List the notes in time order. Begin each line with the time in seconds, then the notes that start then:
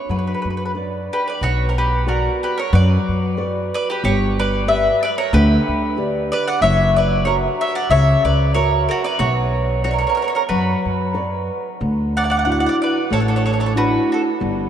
0.09 F#2 F#3 B4
0.19 B4
0.27 B4
0.34 B4
0.42 F#2 B4
0.50 B4
0.57 B4
0.65 B4
0.75 B4 C#5 D5
1.13 G4 B4
1.28 B4 D5
1.41 B1 B3 F#4 C#5
1.69 A#4 C#5
1.78 G4 B4
2.06 B3 F#4 A#4 D5
2.43 G4 B4
2.58 A#4 C#5
2.73 F#2 F#3 B4 D5
3.08 F#2
3.37 F#4 B4 D5
3.74 B4 D5
3.90 G4 B4
4.04 G1 G3 G4 C#5
4.39 B4 D5
4.67 G4 B4 D5 E5
5.03 B4 D5
5.18 A#4 C#5
5.33 D2 D3 G4 B4
5.68 D2
5.97 G4 B4 D5
6.32 B4 D5
6.47 D5 F#5
6.61 F#1 F#3 C#5 E5
6.96 B4 D5
7.25 F#4 A#4 C#5
7.61 C#5 E5
7.75 D5 F#5
7.90 C#2 C#3 C#5 E5
8.24 C#2 B4 D5
8.54 F#4 A#4 C#5
8.89 F#4 A#4
9.04 B4 D5
9.19 B1 B3 F#4 C#5
9.84 F#4 B4 C#5 D5
9.91 A#4 C#5
9.99 A#4 C#5
10.07 A#4 C#5
10.15 A#4 C#5
10.22 A#4 C#5
10.28 A#4 C#5
10.35 A#4 C#5
10.49 F#2 F#3 F#4 B4
10.85 F#2
11.14 B4 C#5 D5
11.80 D2 D3
12.17 D5 F#5
12.24 D5 F#5
12.30 D5 F#5
12.37 D5 F#5
12.45 D4 E4 F#4 D5 F#5
12.52 D5 F#5
12.60 D5 F#5
12.66 D5 F#5
12.82 B4 D5
13.10 A1 A3 A4 C#5
13.20 A4 C#5
13.28 A4 C#5
13.36 A4 C#5
13.46 A4 C#5
13.53 A4 C#5
13.60 A4 C#5
13.66 A4 C#5
13.75 D4 E4 F#4 B4
14.12 F#4 A4
14.40 G1 G3